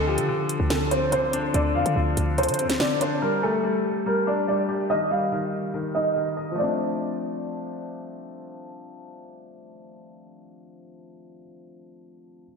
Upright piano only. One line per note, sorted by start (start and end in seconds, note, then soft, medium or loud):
0.07 0.66 G4 medium
0.70 0.88 A4 medium
0.91 1.09 C5 medium
1.12 1.51 C5 medium
1.54 1.72 D5 medium
1.75 2.34 F5 medium
2.38 2.78 C5 medium
2.80 2.98 D5 medium
3.01 3.19 C5 medium
3.22 3.40 A#4 loud
3.43 4.02 A4 medium
4.06 4.24 A#4 medium
4.27 4.45 D5 medium
4.48 4.87 D5 medium
4.90 5.08 D#5 loud
5.11 5.70 F5 medium
5.95 6.54 D#5 medium
6.58 7.80 D5 medium